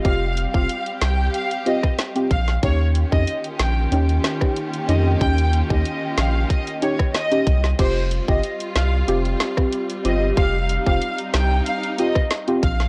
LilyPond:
<<
  \new Staff \with { instrumentName = "Violin section" } { \time 4/4 \key ees \mixolydian \tempo 4 = 93 f''8 r16 f''8 r16 g''8 f''16 r16 ees''16 r8. f''16 r16 | des''16 r8 ees''16 r8 g''16 r4. r16 ees''16 r16 | g''8 r16 ees''8 r16 f''8 ees''16 r16 des''16 r16 ees''8. r16 | c''16 r8 ees''16 r8 f''16 r4. r16 ees''16 r16 |
f''8 r16 f''8 r16 g''8 f''16 r16 ees''16 r8. f''16 r16 | }
  \new Staff \with { instrumentName = "Synth stab" } { \time 4/4 \key ees \mixolydian <c' f' g'>16 r8 <c' f' g'>16 r4. <c' f' g'>16 r8 <c' f' g'>16 r8 | <des' ees' g'>16 r8 <des' ees' g'>16 r4 <des' ees' g'>8. <des' ees' g'>8. <des' ees' g'>8 | <des' ees' g'>16 r8 <des' ees' g'>16 r4. <des' ees' g'>16 r8 <des' ees' g'>16 r8 | <c' f' g'>16 r8 <c' f' g'>16 r4 <c' f' g'>8. <c' f' g'>8. <c' f' g'>8 |
<c' f' g'>16 r8 <c' f' g'>16 r4. <c' f' g'>16 r8 <c' f' g'>16 r8 | }
  \new Staff \with { instrumentName = "String section" } { \time 4/4 \key ees \mixolydian << { g'1 | <ees bes g'>1~ | <ees bes g'>1 | f'1 |
ees'1 | } \\ { <g c'>1 | <des' f'>1~ | <des' f'>1 | <g c'>1~ |
<g c'>1 | } >> }
  \new Staff \with { instrumentName = "Sub bass" } { \clef bass \time 4/4 \key ees \mixolydian f,,8. f,,16 r8 c,8 r4. bes,,8 | ees,8. f,16 r8 bes,,8 ees,8 r4 f,8 | ees,8. ees,16 r8 bes,,8 r4. c,8 | f,,8. g,,16 r8 c,8 f,,8 r4 g,,8 |
f,,8. f,,16 r8 c,8 r4. bes,,8 | }
  \new DrumStaff \with { instrumentName = "Drums" } \drummode { \time 4/4 <hh bd>8 hh16 bd16 hh16 hh16 <hh sn>8 hh16 hh16 hh16 <bd ss>16 <hh sn>16 hh16 <hh bd>16 sn16 | <hh bd>8 hh16 bd16 hh16 hh16 <hh sn>8 hh16 hh16 <hh sn>16 <bd ss>16 hh16 hh16 hh8 | <hh bd>16 hh16 hh16 bd16 hh8 <hh sn>8 <hh bd>16 hh16 hh16 <bd ss>16 <hh sn>16 hh16 <hh bd>16 sn16 | <cymc hh bd>8 hh16 bd16 hh16 hh16 <hh sn>8 hh16 hh16 <hh sn>16 <bd ss>16 hh16 hh16 hh8 |
<hh bd>8 hh16 bd16 hh16 hh16 <hh sn>8 hh16 hh16 hh16 <bd ss>16 <hh sn>16 hh16 <hh bd>16 sn16 | }
>>